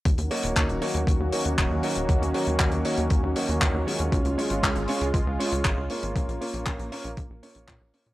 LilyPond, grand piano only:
\new Staff \with { instrumentName = "Grand piano" } { \time 4/4 \key ees \minor \tempo 4 = 118 r8 <bes ees' ges' des''>4 <bes ees' ges' des''>8 r8 <bes ees' ges' des''>4 <bes ees' ges' des''>8~ | <bes ees' ges' des''>8 <bes ees' ges' des''>4 <bes ees' ges' des''>8 r8 <bes ees' ges' des''>4 <aes des' f' des''>8~ | <aes des' f' des''>8 <aes des' f' des''>4 <aes des' f' des''>8 r8 <aes des' f' des''>4 <bes des' f' des''>8~ | <bes des' f' des''>8 <bes des' f' des''>4 <bes des' f' des''>8 r8 <bes des' f' des''>4 <bes des' f' des''>8 | }